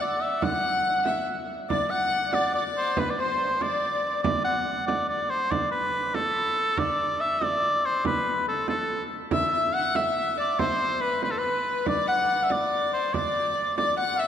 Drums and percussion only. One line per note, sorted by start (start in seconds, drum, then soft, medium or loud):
0.00 frame drum soft
0.21 frame drum soft
0.42 frame drum medium
1.06 frame drum medium
1.27 frame drum soft
1.49 frame drum soft
1.70 frame drum medium
2.33 frame drum medium
2.54 frame drum soft
2.75 frame drum soft
2.97 frame drum medium
3.18 frame drum soft
3.61 frame drum medium
3.83 frame drum soft
4.24 frame drum medium
4.88 frame drum medium
5.09 frame drum soft
5.31 frame drum soft
5.51 frame drum medium
6.15 frame drum medium
6.36 frame drum soft
6.56 frame drum soft
6.77 frame drum medium
7.42 frame drum medium
7.62 frame drum soft
7.84 frame drum soft
8.05 frame drum medium
8.26 frame drum soft
8.47 frame drum soft
8.68 frame drum medium
9.31 frame drum medium
9.95 frame drum medium
10.17 frame drum soft
10.38 frame drum soft
10.59 frame drum medium
11.23 frame drum medium
11.44 frame drum soft
11.65 frame drum soft
11.86 frame drum medium
12.50 frame drum medium
12.72 frame drum soft
12.93 frame drum soft
13.14 frame drum medium
13.36 frame drum soft
13.78 frame drum medium
13.98 frame drum soft